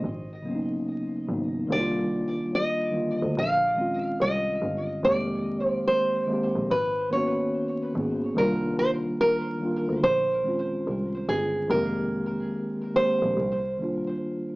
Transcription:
Already playing: D#5
0.04 G#1
0.42 C#3 F#3 A#3
0.47 B3 C#4
0.55 D#4
1.27 G#1 C#3 F#3 A#3
1.32 B3 D#4
1.67 C2 D#3 G3 A#3
1.72 D4 D#4 D5
1.79 F4
2.55 D#5
2.91 D#3 G3 A#3
2.95 D3 F4
3.23 D2
3.38 A#1 F5
3.75 D#3 G#3 C4
3.80 C#4 F4
4.21 C2 D#5
4.62 G1
5.02 F1 D#3 G#3 A#3 D5
5.06 C4 G4
5.66 C5
5.88 C5
6.26 D#3 G#3 A#3
6.31 C4 G4
6.56 A#1
6.71 G#1 B4
7.10 D#3 A#3 B3 C#5
7.14 C#4 F#4
7.93 G#1 D#3 A#3 B3
7.98 C#4 G#4
8.35 C2 D#3 G3 A#3 A#4
8.40 D4 F4
8.79 C5
9.21 A#4
9.59 D#3 G3 A#3
9.64 D4 F4
9.89 D2
10.03 A#1 C5
10.42 D#3 G#3 C4
10.47 C#4 F4
10.87 C2
11.29 G1 G#4
11.68 F1 D#3 G#3 A#3 A#4
11.73 C4 G4
12.94 D#3 G#3 A#3 C5
12.98 C4 G4
13.23 A#1
13.37 C2
13.77 D#3 G3 A#3
13.82 D4 F4

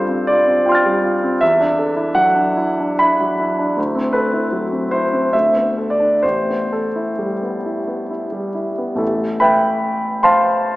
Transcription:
Already playing: G2 G3 C4 F4 A4 C5
0.09 C4
0.27 F4 D5
0.46 C4
0.66 F4 G5 C6
0.72 F6 A6
0.86 G3
1.04 F4
1.23 C4
1.41 E2 E5
1.60 D4
1.79 A4
1.96 E4
2.15 F#3 F#5
2.35 D4
2.57 E4
2.80 D4
2.99 E4 B5
3.21 F#3
3.40 E4
3.59 D4
3.77 D2
3.95 C4
4.13 A4 B4
4.33 E4
4.52 F#3
4.72 C4
4.91 E4 C5
5.13 C4
5.33 D2 E5
5.56 B3
5.78 A4
5.90 D5
6.00 D4
6.23 A1 C5
6.50 B3
6.73 A4
6.96 E4
7.19 G3
7.43 B3
7.66 E4
7.88 B3
8.11 E4
8.32 G3
8.55 E4
8.78 B3
8.95 A1 A3 B3 E4 A4
9.40 B4 E5 G5 B5
10.23 C5 F5 A5 C6

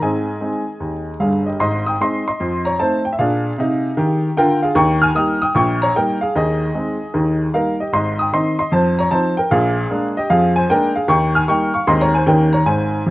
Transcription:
0.02 G#2 C4 G#4 D#5 G#5
0.41 G#3 C4 D#4
0.80 D#2
1.20 G1 G2 G#4 F5
1.46 G4 D#5
1.60 G#1 G#2 D#5 C6
1.86 G5 D#6
2.00 G#3 C4 D#4 D#5 C6
2.28 D#5 C6
2.40 F2 F3
2.65 C#5 A#5
2.79 A3 C4 D#4 C5 A5
3.05 G5
3.13 E5
3.19 A#2 D4 G#4 F5
3.58 C3 D#4
3.97 D#3 G4
4.37 D3 F4 A#4 G5
4.63 G#4 F5
4.75 D#2 D#3 G5 C#6
5.02 G#5 F6
5.15 G3 A#3 D#4 G5 D#6
5.42 G5 D#6
5.55 A#1 A#2 G5 C#6
5.82 C#5 A#5
5.95 G3 A#3 D#4 A#4 G5
6.21 G#4 F5
6.35 D#2 D#3 G#4 D#5
6.74 G#3 C4 D#4
7.14 D#2 D#3
7.53 G3 A#3 D#4 A#4 F5
7.80 G4 D#5
7.93 G#1 G#2 D#5 C6
8.19 G5 D#6
8.33 D#3 C4 D#4 D#5 C6
8.59 D#5 C6
8.72 F2 F3 C5 A5
8.99 C#5 A#5
9.11 F3 C4 D#4 C5 A5
9.37 A#4 G5
9.51 A#1 A#2 G#4 F5
9.90 G#3 A#3 D4
10.17 G4 D#5
10.30 F2 F3 G#4 F5
10.56 C5 G#5
10.69 G#3 A#3 D4 A#4 G5
10.95 G#4 F5
11.08 D#2 D#3 G5 C#6
11.35 G#5 F6
11.48 G3 A#3 D#4 G5 C#6
11.74 F5 C#6
11.87 D#2 D#3 G#3 C4 D#4 D#5 C6
12.01 C#5 A#5
12.15 C5 G#5
12.26 D#2 D#3 A#3 C#4 D#4 A#4 G5
12.53 C#5 A#5
12.66 G#1 G#2 C5 G#5
13.06 F2 F3

